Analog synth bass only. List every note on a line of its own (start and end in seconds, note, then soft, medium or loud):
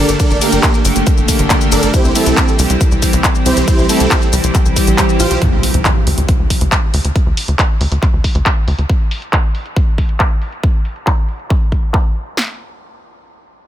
0.09 0.16 G1 medium
0.31 0.38 G1 medium
0.53 0.59 G1 medium
0.85 0.92 G1 loud
0.96 1.03 G1 medium
1.18 1.25 G1 medium
1.39 1.46 G1 medium
1.72 1.79 G1 medium
1.83 1.90 G1 medium
2.05 2.12 C2 medium
2.26 2.33 C2 medium
2.59 2.66 C2 loud
2.70 2.77 C2 medium
2.92 2.99 C2 medium
3.13 3.20 C2 medium
3.46 3.53 C2 medium
3.57 3.64 C2 medium
3.79 3.86 C2 medium
4.00 4.07 C2 medium
4.33 4.40 C2 medium
4.44 4.51 C2 medium
4.66 4.73 C2 medium
4.87 4.94 A#1 medium
5.20 5.27 A#1 loud
5.31 5.38 C2 medium
5.53 5.59 D2 medium
5.74 5.81 D2 medium
6.07 6.14 D2 loud
6.18 6.25 D2 medium
6.40 6.46 D2 medium
6.61 6.68 D2 medium
6.94 7.01 D2 loud
7.05 7.12 D2 medium
7.26 7.33 D2 medium
7.48 7.55 D2 medium
7.81 7.88 D2 medium
7.92 7.99 D2 medium
8.13 8.20 D2 medium
8.35 8.42 D2 medium
8.68 8.75 D2 medium
8.79 8.86 D2 medium